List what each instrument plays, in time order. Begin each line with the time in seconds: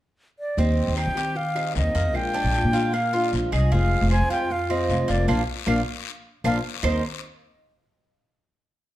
0.39 flute D5
0.57 upright bass D#2, steel-string acoustic guitar D#3 G3 C4 G4, cuban tres C4, flute D#5, long guiro
0.88 upright bass D#2
0.96 steel-string acoustic guitar D#3 G3 C4 G4, cuban tres D#4, flute G5, short guiro, claves
1.07 upright bass D#3
1.15 steel-string acoustic guitar G3 C4 G4, cuban tres G4, short guiro
1.35 flute F5, muted steel-string acoustic guitar stroke, long guiro
1.55 steel-string acoustic guitar G3 C4 G4, cuban tres D#4, claves
1.74 upright bass D#2, steel-string acoustic guitar D#3 G3 C4 G4, flute D#5, short guiro
1.95 upright bass F2, cuban tres A#3, short guiro
2.13 upright bass A#1, steel-string acoustic guitar F3 G#3 D4 F4, flute G5, long guiro, claves
2.34 cuban tres D4
2.44 upright bass A#1
2.53 steel-string acoustic guitar F3 G#3 D4 F4, short guiro
2.64 upright bass A#2
2.73 steel-string acoustic guitar G#3 D4 F4, cuban tres F4, short guiro
2.92 cuban tres A#3, flute F5, muted steel-string acoustic guitar stroke, long guiro, claves
3.13 steel-string acoustic guitar G#3 D4 F4, cuban tres F4
3.32 upright bass A#1, steel-string acoustic guitar F3 G#3 D4 F4, short guiro
3.52 upright bass C2, cuban tres G#4, flute D#5, short guiro, claves
3.72 upright bass F1, steel-string acoustic guitar C3 F3 G#3 C4 F4, cuban tres G#3, flute F5, long guiro
4.01 upright bass F1
4.11 steel-string acoustic guitar F3 G#3 C4 F4, cuban tres C4, flute G#5, short guiro, claves
4.21 upright bass F2
4.29 steel-string acoustic guitar F3 G#3 C4 F4, cuban tres F4, flute G5, short guiro
4.50 flute F5, muted steel-string acoustic guitar stroke, long guiro
4.69 steel-string acoustic guitar F3 G#3 C4 F4, cuban tres C4, flute D#5, claves
4.89 upright bass F1, steel-string acoustic guitar F3 G#3 C4 F4, short guiro
5.08 upright bass F1, cuban tres A#3, flute D5, short guiro
5.28 upright bass A#1, steel-string acoustic guitar F3 A#3 D4, cuban tres A#3 D4 F4, flute F5, long guiro, claves
5.66 upright bass A#1, steel-string acoustic guitar F3 A#3 D4, cuban tres A#3 D4 F4, flute F5, long guiro, claves
6.44 upright bass A#1, steel-string acoustic guitar F3 A#3 D4, cuban tres A#3 D4 F4, flute F5, long guiro, claves
6.83 upright bass D#2, steel-string acoustic guitar D#3 G3 C4 G4, cuban tres D#4 A#4 C5, flute D#5, long guiro, claves